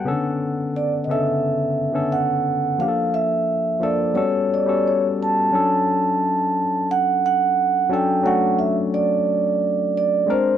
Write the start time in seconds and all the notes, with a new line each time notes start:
Already playing: F#5
0.05 C#3 B3 C#4 A4
0.11 D3
0.76 D5
1.04 C#3 D#5
1.09 B3 C#4 A4 E5
1.14 D3
1.92 D3 B3 C#4 A4
2.12 F#5
2.78 F3 A#3 D4 G4 F5
2.88 A4
3.14 E5
3.80 F3 A#3 D4 A4 D5
4.14 G3 B3 C#4 F#4 A4 C#5
4.54 D5
4.66 G3 B3 C#4 F#4 A4
4.88 C#5
5.23 A5
5.51 F#3 C#4 D4 A4
6.91 F#5
7.26 F#5
7.89 F#3 C#4 D4 A4
7.94 G5
8.23 F#3 A3 D4 F#4 F#5
8.59 E5
8.94 D5
9.97 D5
10.26 G#3 C4 D4 A#4
10.30 C5